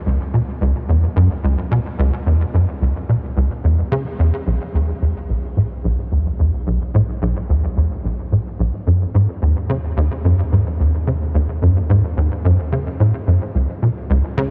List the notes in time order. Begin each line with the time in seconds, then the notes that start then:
Already playing: C#2
0.06 C#2
0.34 B2
0.61 C#2
0.89 E2
1.16 F#2
1.44 C#2
1.71 B2
1.99 C#2
2.27 E2
2.54 F#2
2.82 C#2
3.09 B2
3.37 C#2
3.64 E2
3.92 C#3
4.19 E2
4.47 B1
4.74 D#2
5.02 E2
5.29 B1
5.57 A2
5.84 B1
6.12 D#2
6.39 E2
6.67 B1
6.94 A2
7.22 B1
7.49 D#2
7.77 E2
8.04 B1
8.32 A2
8.59 B1
8.87 D#2 F#2
9.15 G#2
9.42 D#2
9.70 C#3
9.97 D#2
10.25 F#2
10.52 G#2
10.80 D#2
11.07 C#3
11.35 D#2
11.62 F#2
11.90 G#2
12.17 D#2
12.45 F#2
12.72 C#3
13.00 A2
13.27 C#2 F#2
13.55 C#2
13.82 B2
14.10 C#2
14.38 C#3